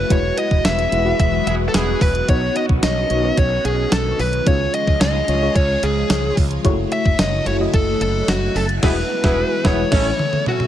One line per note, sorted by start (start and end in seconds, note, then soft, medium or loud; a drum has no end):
0.00 4.43 F#3 medium
0.00 0.12 A3 medium
0.00 0.10 E4 medium
0.00 0.10 F#4 medium
0.00 4.43 F#4 medium
0.00 0.12 B4 loud
0.00 0.12 C#5 medium
0.10 0.30 E1 loud
0.10 2.26 E3 medium
0.10 0.87 G#3 medium
0.10 2.26 G#3 medium
0.10 4.43 B3 medium
0.10 0.87 E4 medium
0.10 0.87 F#4 medium
0.10 0.87 B4 medium
0.10 0.38 C#5 loud
0.10 kick loud
0.10 closed hi-hat medium
0.38 0.63 D#5 medium
0.38 closed hi-hat medium
0.51 0.61 E1 medium
0.51 kick medium
0.65 0.84 E1 loud
0.65 1.19 E5 loud
0.65 snare loud
0.65 closed hi-hat medium
0.65 tambourine medium
0.79 closed hi-hat soft
0.92 1.12 E1 loud
0.92 1.04 G#3 medium
0.92 1.04 E4 medium
0.92 1.04 F#4 medium
0.92 1.05 B4 medium
0.92 closed hi-hat medium
1.05 2.08 G#3 medium
1.05 2.08 E4 medium
1.05 2.08 F#4 medium
1.05 2.08 B4 medium
1.19 1.39 E1 loud
1.19 1.46 E5 loud
1.19 kick medium
1.19 closed hi-hat medium
1.47 1.66 E1 loud
1.47 1.58 B3 medium
1.47 1.58 E4 medium
1.47 1.58 G#4 medium
1.47 1.53 E5 loud
1.47 closed hi-hat medium
1.68 1.74 A4 medium
1.74 1.94 E1 loud
1.74 2.13 B3 medium
1.74 2.13 E4 medium
1.74 2.13 G#4 medium
1.74 2.02 G#4 medium
1.74 snare loud
1.74 closed hi-hat medium
1.74 tambourine medium
2.01 2.21 E1 loud
2.01 2.27 B4 medium
2.01 kick medium
2.01 open hi-hat medium
2.15 closed hi-hat soft
2.28 2.48 B1 loud
2.28 4.45 D#3 medium
2.28 3.05 B3 medium
2.28 4.44 C#4 medium
2.28 3.05 D#4 medium
2.28 3.05 F#4 medium
2.28 2.56 C#5 loud
2.28 3.06 C#5 medium
2.28 kick loud
2.28 closed hi-hat medium
2.56 2.64 D#5 medium
2.56 closed hi-hat medium
2.69 2.79 B1 medium
2.69 kick medium
2.83 3.03 B1 loud
2.83 3.38 D#5 loud
2.83 snare loud
2.83 closed hi-hat medium
2.83 tambourine medium
3.10 3.30 B1 loud
3.10 3.22 B3 medium
3.10 3.22 D#4 medium
3.10 3.23 F#4 medium
3.10 3.23 C#5 medium
3.10 closed hi-hat medium
3.23 4.26 B3 medium
3.23 4.26 D#4 medium
3.23 4.26 F#4 medium
3.23 4.26 C#5 medium
3.37 3.57 B1 medium
3.37 3.63 C#5 medium
3.37 kick medium
3.37 closed hi-hat medium
3.65 3.84 B1 medium
3.65 3.92 G#4 medium
3.65 closed hi-hat medium
3.92 4.12 B1 medium
3.92 4.20 A4 medium
3.92 snare loud
3.92 closed hi-hat medium
3.92 tambourine medium
4.19 4.39 B1 loud
4.19 4.45 B4 loud
4.19 open hi-hat medium
4.33 closed hi-hat medium
4.46 4.66 C#2 loud
4.46 8.79 C#3 medium
4.46 6.62 F3 medium
4.46 5.23 G#3 medium
4.46 6.62 G#3 medium
4.46 5.23 C#4 medium
4.46 6.62 F4 medium
4.46 5.24 F4 medium
4.46 6.62 G#4 medium
4.46 5.24 C#5 medium
4.46 4.74 C#5 loud
4.46 kick loud
4.46 closed hi-hat medium
4.74 5.00 D#5 medium
4.74 closed hi-hat medium
4.87 4.97 C#2 loud
4.87 kick medium
5.01 5.20 C#2 loud
5.01 5.56 D#5 medium
5.01 snare loud
5.01 closed hi-hat medium
5.01 tambourine medium
5.28 5.48 C#2 loud
5.28 5.41 G#3 medium
5.28 5.41 C#4 medium
5.28 5.41 F4 medium
5.28 5.41 C#5 medium
5.28 closed hi-hat medium
5.42 6.44 G#3 medium
5.42 6.44 C#4 medium
5.42 6.45 F4 medium
5.42 6.45 C#5 medium
5.55 5.75 C#2 loud
5.55 5.84 C#5 medium
5.55 kick medium
5.55 closed hi-hat medium
5.83 6.03 C#2 loud
5.83 6.34 G#4 medium
5.83 closed hi-hat medium
6.10 6.30 C#2 loud
6.10 snare loud
6.10 closed hi-hat medium
6.10 tambourine medium
6.37 6.57 C#2 loud
6.37 kick loud
6.37 open hi-hat medium
6.51 closed hi-hat soft
6.64 6.84 F#1 loud
6.64 9.88 F#3 medium
6.64 6.71 G#3 medium
6.64 8.81 A3 medium
6.64 7.41 E4 medium
6.64 8.81 E4 medium
6.64 9.89 F#4 medium
6.64 7.42 F#4 medium
6.64 7.42 C#5 loud
6.64 kick loud
6.64 closed hi-hat medium
6.70 7.44 A3 medium
6.92 7.19 E5 loud
6.92 closed hi-hat medium
7.05 7.15 F#1 medium
7.05 kick medium
7.19 7.39 F#1 medium
7.19 7.47 D#5 loud
7.19 snare loud
7.19 closed hi-hat medium
7.19 tambourine medium
7.46 7.66 F#1 loud
7.46 7.59 A3 medium
7.46 7.59 E4 medium
7.46 7.59 F#4 medium
7.46 7.54 C#5 medium
7.46 7.60 C#5 medium
7.46 closed hi-hat medium
7.60 8.62 A3 medium
7.60 8.62 E4 medium
7.60 8.63 F#4 medium
7.60 8.63 D#5 medium
7.74 7.93 F#1 loud
7.74 7.99 A4 loud
7.74 kick medium
7.74 closed hi-hat medium
8.01 8.20 F#1 loud
8.01 8.27 A4 medium
8.01 closed hi-hat medium
8.28 8.48 F#1 loud
8.28 8.57 F#4 medium
8.28 snare loud
8.28 closed hi-hat medium
8.28 tambourine medium
8.55 8.82 F#1 loud
8.55 8.64 A4 medium
8.55 open hi-hat medium
8.69 closed hi-hat soft
8.83 9.02 E1 loud
8.83 10.67 E3 medium
8.83 9.01 G#3 loud
8.83 9.91 G#3 medium
8.83 8.97 B3 loud
8.83 9.91 B3 medium
8.83 8.97 E4 medium
8.83 9.01 E4 loud
8.83 9.02 F#4 loud
8.83 8.97 G#4 loud
8.83 9.02 B4 loud
8.83 9.68 B4 loud
8.83 kick loud
8.83 snare loud
8.83 crash medium
9.23 9.42 E1 loud
9.23 9.42 G#3 medium
9.23 9.38 B3 loud
9.23 9.42 E4 medium
9.23 9.38 E4 loud
9.23 9.43 F#4 loud
9.23 9.38 G#4 loud
9.23 9.43 B4 medium
9.23 kick loud
9.23 snare loud
9.64 9.83 E1 loud
9.64 9.83 G#3 loud
9.64 9.79 B3 loud
9.64 9.83 E4 loud
9.64 9.79 E4 loud
9.64 9.83 F#4 loud
9.64 9.79 G#4 medium
9.64 9.84 B4 medium
9.64 10.43 C#5 medium
9.64 kick loud
9.64 snare loud
9.91 10.11 A1 loud
9.91 10.67 C#3 medium
9.91 10.10 A3 loud
9.91 10.67 A3 medium
9.91 10.10 C#4 loud
9.91 10.06 C#4 loud
9.91 10.10 E4 loud
9.91 10.06 E4 loud
9.91 10.67 E4 medium
9.91 10.67 A4 medium
9.91 10.06 A4 loud
9.91 10.11 C#5 loud
9.91 kick loud
9.91 snare loud
9.91 crash medium
10.19 mid tom medium
10.33 mid tom medium
10.46 10.67 F#4 medium
10.46 mid tom medium
10.60 mid tom medium